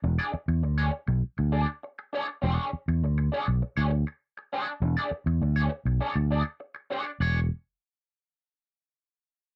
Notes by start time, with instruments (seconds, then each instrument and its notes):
0.04 fingered electric bass E1, muted clean electric guitar stroke
0.19 clean electric guitar D4 G#4 D5
0.33 muted clean electric guitar stroke, muted fingered electric bass stroke
0.48 fingered electric bass E2, muted clean electric guitar stroke
0.63 fingered electric bass D2, muted clean electric guitar stroke
0.78 clean electric guitar D4 G#4 C#5
0.93 muted clean electric guitar stroke
1.07 fingered electric bass B1, muted clean electric guitar stroke
1.24 muted fingered electric bass stroke
1.38 fingered electric bass D2, muted clean electric guitar stroke
1.52 clean electric guitar D4 G#4 D5
1.68 muted clean electric guitar stroke
1.83 muted clean electric guitar stroke
1.99 muted clean electric guitar stroke
2.13 clean electric guitar D4 G#4 C#5
2.28 muted clean electric guitar stroke
2.42 fingered electric bass E1, clean electric guitar C#4 G4 C5
2.54 clean electric guitar D4 G#4 C#5
2.73 muted fingered electric bass stroke
2.88 fingered electric bass E2, muted clean electric guitar stroke
3.03 fingered electric bass D2, muted clean electric guitar stroke
3.18 muted clean electric guitar stroke
3.32 clean electric guitar D4 G#4 C#5
3.47 fingered electric bass B1, muted clean electric guitar stroke
3.62 muted clean electric guitar stroke, muted fingered electric bass stroke
3.77 fingered electric bass D2, clean electric guitar D4 G#4 C#5
3.92 muted clean electric guitar stroke
4.07 muted clean electric guitar stroke
4.37 muted clean electric guitar stroke
4.53 clean electric guitar D4 G#4 C#5
4.68 muted clean electric guitar stroke
4.82 fingered electric bass E1, muted clean electric guitar stroke
4.97 clean electric guitar D4 G#4 D5
5.11 muted fingered electric bass stroke, muted clean electric guitar stroke
5.26 fingered electric bass E2, muted clean electric guitar stroke
5.41 fingered electric bass D2, muted clean electric guitar stroke
5.56 clean electric guitar D4 G#4 C#5
5.72 muted clean electric guitar stroke
5.85 fingered electric bass B1, muted clean electric guitar stroke
6.01 clean electric guitar D4 G#4 C#5, muted fingered electric bass stroke
6.16 fingered electric bass D2, muted clean electric guitar stroke
6.31 clean electric guitar D4 G#4 D5
6.45 muted clean electric guitar stroke
6.60 muted clean electric guitar stroke
6.75 muted clean electric guitar stroke
6.90 clean electric guitar D4 G#4 C#5
7.06 muted clean electric guitar stroke
7.20 fingered electric bass E1, clean electric guitar D4 G#4 C#5